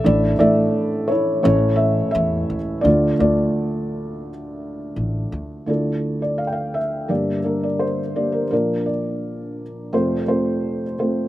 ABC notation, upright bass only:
X:1
M:4/4
L:1/8
Q:1/4=85
K:Dm
V:1 name="Upright bass" clef=bass
A,,, A,,, z2 A,,,2 E,, ^C,, | D,, D,, z4 A,,, D,, | z8 | z8 |]